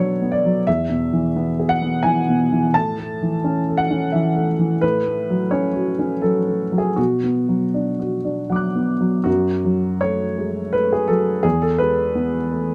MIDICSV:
0, 0, Header, 1, 2, 480
1, 0, Start_track
1, 0, Key_signature, 3, "minor"
1, 0, Tempo, 695249
1, 458, Time_signature, 3, 2, 24, 8
1, 4298, Tempo, 759494
1, 6698, Tempo, 710900
1, 8536, End_track
2, 0, Start_track
2, 0, Title_t, "Upright piano"
2, 0, Program_c, 0, 0
2, 0, Control_c, 0, 64, 127
2, 0, Note_on_c, 0, 47, 53
2, 0, Note_on_c, 0, 54, 43
2, 0, Note_on_c, 0, 59, 39
2, 0, Note_on_c, 0, 62, 46
2, 0, Note_on_c, 0, 66, 44
2, 0, Note_on_c, 0, 69, 69
2, 0, Note_on_c, 0, 71, 68
2, 0, Note_on_c, 0, 73, 72
2, 82, Note_off_c, 0, 62, 0
2, 152, Note_off_c, 0, 59, 0
2, 152, Note_on_c, 0, 59, 41
2, 216, Note_off_c, 0, 73, 0
2, 219, Note_on_c, 0, 74, 67
2, 236, Note_off_c, 0, 54, 0
2, 313, Note_on_c, 0, 54, 44
2, 401, Note_off_c, 0, 59, 0
2, 432, Note_off_c, 0, 47, 0
2, 458, Note_off_c, 0, 74, 0
2, 462, Note_on_c, 0, 76, 82
2, 465, Note_off_c, 0, 54, 0
2, 471, Control_c, 0, 64, 0
2, 471, Note_on_c, 0, 40, 53
2, 475, Note_off_c, 0, 69, 0
2, 475, Note_off_c, 0, 71, 0
2, 477, Note_off_c, 0, 66, 0
2, 567, Control_c, 0, 64, 127
2, 619, Note_on_c, 0, 47, 45
2, 779, Note_on_c, 0, 52, 46
2, 871, Note_off_c, 0, 47, 0
2, 941, Note_on_c, 0, 59, 49
2, 1030, Note_off_c, 0, 52, 0
2, 1101, Note_on_c, 0, 68, 45
2, 1167, Note_on_c, 0, 78, 86
2, 1173, Note_off_c, 0, 76, 0
2, 1191, Note_off_c, 0, 59, 0
2, 1257, Note_on_c, 0, 59, 49
2, 1351, Note_off_c, 0, 68, 0
2, 1399, Note_on_c, 0, 80, 81
2, 1408, Note_off_c, 0, 78, 0
2, 1410, Note_on_c, 0, 52, 42
2, 1509, Note_off_c, 0, 59, 0
2, 1577, Note_on_c, 0, 47, 46
2, 1665, Note_off_c, 0, 52, 0
2, 1739, Note_on_c, 0, 52, 46
2, 1830, Note_off_c, 0, 47, 0
2, 1870, Note_off_c, 0, 40, 0
2, 1886, Note_off_c, 0, 80, 0
2, 1892, Note_on_c, 0, 81, 89
2, 1896, Note_off_c, 0, 52, 0
2, 1901, Note_on_c, 0, 45, 57
2, 1904, Control_c, 0, 64, 0
2, 2030, Control_c, 0, 64, 127
2, 2064, Note_on_c, 0, 57, 45
2, 2224, Note_on_c, 0, 52, 49
2, 2316, Note_off_c, 0, 57, 0
2, 2377, Note_on_c, 0, 61, 51
2, 2475, Note_off_c, 0, 52, 0
2, 2543, Note_on_c, 0, 69, 45
2, 2606, Note_on_c, 0, 78, 84
2, 2614, Note_off_c, 0, 81, 0
2, 2631, Note_off_c, 0, 61, 0
2, 2698, Note_on_c, 0, 61, 48
2, 2793, Note_off_c, 0, 69, 0
2, 2844, Note_on_c, 0, 76, 66
2, 2849, Note_off_c, 0, 78, 0
2, 2855, Note_on_c, 0, 52, 44
2, 2951, Note_off_c, 0, 61, 0
2, 3006, Note_on_c, 0, 57, 42
2, 3088, Note_off_c, 0, 76, 0
2, 3109, Note_off_c, 0, 52, 0
2, 3169, Note_on_c, 0, 52, 43
2, 3264, Note_off_c, 0, 57, 0
2, 3308, Note_off_c, 0, 45, 0
2, 3324, Note_on_c, 0, 71, 84
2, 3329, Note_off_c, 0, 52, 0
2, 3335, Note_on_c, 0, 45, 57
2, 3343, Control_c, 0, 64, 0
2, 3437, Control_c, 0, 64, 127
2, 3489, Note_on_c, 0, 57, 43
2, 3660, Note_on_c, 0, 54, 45
2, 3741, Note_off_c, 0, 57, 0
2, 3801, Note_off_c, 0, 71, 0
2, 3803, Note_on_c, 0, 73, 72
2, 3811, Note_on_c, 0, 61, 47
2, 3907, Note_off_c, 0, 54, 0
2, 3957, Note_on_c, 0, 66, 45
2, 4067, Note_off_c, 0, 61, 0
2, 4137, Note_on_c, 0, 61, 46
2, 4225, Note_off_c, 0, 66, 0
2, 4292, Note_on_c, 0, 69, 65
2, 4296, Note_off_c, 0, 73, 0
2, 4303, Note_on_c, 0, 54, 42
2, 4394, Note_off_c, 0, 61, 0
2, 4454, Note_on_c, 0, 57, 40
2, 4551, Note_off_c, 0, 54, 0
2, 4611, Note_on_c, 0, 54, 41
2, 4649, Note_off_c, 0, 69, 0
2, 4649, Note_on_c, 0, 68, 65
2, 4708, Note_off_c, 0, 57, 0
2, 4749, Note_off_c, 0, 45, 0
2, 4764, Note_on_c, 0, 66, 64
2, 4771, Note_off_c, 0, 68, 0
2, 4772, Note_off_c, 0, 54, 0
2, 4773, Note_on_c, 0, 47, 51
2, 4786, Control_c, 0, 64, 0
2, 4894, Control_c, 0, 64, 127
2, 4937, Note_on_c, 0, 59, 38
2, 5093, Note_on_c, 0, 54, 40
2, 5194, Note_off_c, 0, 59, 0
2, 5256, Note_on_c, 0, 62, 44
2, 5352, Note_off_c, 0, 54, 0
2, 5408, Note_off_c, 0, 66, 0
2, 5417, Note_on_c, 0, 66, 41
2, 5514, Note_off_c, 0, 62, 0
2, 5576, Note_on_c, 0, 62, 42
2, 5674, Note_off_c, 0, 66, 0
2, 5733, Note_on_c, 0, 78, 31
2, 5734, Note_on_c, 0, 54, 39
2, 5750, Note_on_c, 0, 86, 34
2, 5772, Note_on_c, 0, 90, 34
2, 5835, Note_off_c, 0, 62, 0
2, 5897, Note_on_c, 0, 59, 36
2, 5995, Note_off_c, 0, 54, 0
2, 6055, Note_on_c, 0, 54, 39
2, 6155, Note_off_c, 0, 59, 0
2, 6191, Note_off_c, 0, 78, 0
2, 6194, Note_off_c, 0, 47, 0
2, 6200, Note_off_c, 0, 86, 0
2, 6201, Note_on_c, 0, 66, 74
2, 6211, Note_off_c, 0, 90, 0
2, 6212, Note_on_c, 0, 42, 53
2, 6216, Note_off_c, 0, 54, 0
2, 6231, Control_c, 0, 64, 0
2, 6339, Control_c, 0, 64, 127
2, 6459, Note_on_c, 0, 54, 43
2, 6687, Note_off_c, 0, 66, 0
2, 6688, Note_on_c, 0, 73, 80
2, 6696, Note_on_c, 0, 57, 46
2, 6846, Note_off_c, 0, 54, 0
2, 6938, Note_on_c, 0, 56, 39
2, 7086, Note_off_c, 0, 57, 0
2, 7173, Note_on_c, 0, 71, 76
2, 7178, Note_off_c, 0, 73, 0
2, 7179, Note_on_c, 0, 57, 45
2, 7180, Note_off_c, 0, 56, 0
2, 7297, Note_off_c, 0, 71, 0
2, 7307, Note_on_c, 0, 68, 68
2, 7410, Note_on_c, 0, 69, 75
2, 7423, Note_off_c, 0, 68, 0
2, 7424, Note_on_c, 0, 54, 42
2, 7561, Note_off_c, 0, 57, 0
2, 7626, Note_off_c, 0, 42, 0
2, 7647, Note_on_c, 0, 68, 83
2, 7652, Note_off_c, 0, 69, 0
2, 7657, Note_on_c, 0, 40, 56
2, 7659, Note_off_c, 0, 54, 0
2, 7670, Control_c, 0, 64, 0
2, 7771, Note_off_c, 0, 68, 0
2, 7775, Note_on_c, 0, 69, 72
2, 7795, Control_c, 0, 64, 127
2, 7887, Note_on_c, 0, 71, 87
2, 7895, Note_off_c, 0, 69, 0
2, 7900, Note_on_c, 0, 56, 43
2, 8136, Note_on_c, 0, 59, 50
2, 8283, Note_off_c, 0, 56, 0
2, 8381, Note_on_c, 0, 57, 44
2, 8520, Note_off_c, 0, 59, 0
2, 8536, Note_off_c, 0, 40, 0
2, 8536, Note_off_c, 0, 57, 0
2, 8536, Note_off_c, 0, 71, 0
2, 8536, End_track
0, 0, End_of_file